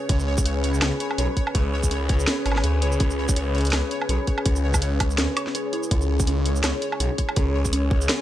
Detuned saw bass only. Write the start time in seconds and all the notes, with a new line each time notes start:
0.09 C#2
0.82 C#2
1.18 B1
1.55 C#2
2.46 G#1
2.64 D2
2.82 C#2
3.00 C#2
3.73 C#2
4.09 B1
4.46 C#2
5.18 D2
5.91 C#2
6.64 C#2
7.00 B1
7.37 C#2